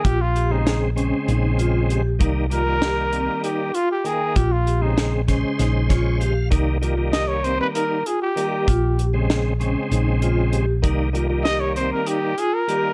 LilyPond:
<<
  \new Staff \with { instrumentName = "Trumpet" } { \time 7/8 \key c \phrygian \tempo 4 = 97 g'16 f'8 ees'8 r2 r16 | r8 bes'4. g'8 f'16 g'16 aes'8 | g'16 f'8 ees'8 r2 r16 | r4 ees''16 des''16 c''16 b'16 bes'8 aes'16 g'8.~ |
g'8. r2 r8. | r4 ees''16 des''16 c''16 bes'16 g'8 aes'16 bes'8. | }
  \new Staff \with { instrumentName = "Vibraphone" } { \time 7/8 \key c \phrygian f'8 g'8 aes'8 des'8 ees'8 f'8 g'8 | ees'8 f'8 g'8 c'8 ees'8 f'8 g''8 | f'8 g'8 aes'8 des'8 ees'8 f'8 g'8 | ees'8 f'8 g'8 c'8 ees'8 f'8 g'8 |
f'8 g'8 aes'8 des'8 ees'8 f'8 g'8 | ees'8 f'8 g'8 c'8 ees'8 f'8 g'8 | }
  \new Staff \with { instrumentName = "Tonewheel organ" } { \time 7/8 \key c \phrygian r2. r8 | r2. r8 | r2 r8 des''8 f''8 | r2. r8 |
r2. r8 | r2. r8 | }
  \new Staff \with { instrumentName = "Tonewheel organ" } { \clef bass \time 7/8 \key c \phrygian r8. <des aes c'>8. <des aes c'>4.~ <des aes c'>16 r16 | <ees g bes>8 <ees g bes>16 <ees g bes>4.~ <ees g bes>16 r8 <ees bes>8 | r8. <des aes c'>8. <des aes c''>4.~ <des aes c''>16 r16 | <ees g bes>8 <ees g bes>16 <ees g bes>4.~ <ees g bes>16 r8 <ees g bes>8 |
r8. <des aes c'>8. <des aes c'>4.~ <des aes c'>16 r16 | <ees g bes>8 <ees g bes>16 <ees g bes>4.~ <ees g bes>16 r8 <ees g bes>8 | }
  \new Staff \with { instrumentName = "Fingered electric bass" } { \clef bass \time 7/8 \key c \phrygian bes,,2 bes,,4. | c,2 r4. | bes,,2 bes,,4. | c,2 r4. |
bes,,2 bes,,4. | c,2 r4. | }
  \new DrumStaff \with { instrumentName = "Drums" } \drummode { \time 7/8 <hh bd>8 hh8 <hh sn>8 hh8 hh8 hh8 hh8 | <hh bd>8 hh8 <hh sn>8 hh8 hh8 hh8 hh8 | <hh bd>8 hh8 <hh sn>8 <hh bd sn>8 <hh sn>8 <hh bd sn>8 hh8 | <hh bd>8 hh8 <hh sn>8 hh8 hh8 hh8 hh8 |
<hh bd>8 hh8 <hh sn>8 hh8 hh8 hh8 hh8 | <hh bd>8 hh8 <hh sn>8 hh8 hh8 hh8 hh8 | }
>>